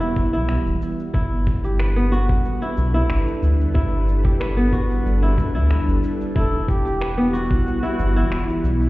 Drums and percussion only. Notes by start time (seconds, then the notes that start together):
0.02 shaker
0.16 kick, shaker
0.34 shaker
0.49 finger snap, shaker
0.66 shaker
0.82 shaker
1.00 shaker
1.14 kick, shaker
1.47 kick, shaker
1.65 shaker
1.80 finger snap, shaker
2.13 shaker
2.29 kick, shaker
2.45 shaker
2.62 shaker
2.78 shaker
2.95 shaker
3.10 finger snap, shaker
3.28 shaker
3.43 shaker
3.61 shaker
3.75 kick, shaker
4.09 shaker
4.25 kick, shaker
4.41 finger snap, shaker
4.73 kick, shaker
4.91 shaker
5.06 shaker
5.23 shaker
5.38 kick, shaker
5.56 shaker
5.71 finger snap, shaker
5.89 shaker
6.04 shaker
6.21 shaker
6.36 kick, shaker
6.53 djembe bass
6.68 kick, djembe slap, shaker
6.87 shaker
7.01 finger snap, shaker
7.35 shaker
7.51 kick, djembe bass, shaker
7.67 shaker
7.84 shaker
7.99 djembe tone, shaker
8.15 djembe slap, shaker
8.32 finger snap, shaker
8.48 djembe tone, shaker
8.65 shaker
8.80 djembe slap, shaker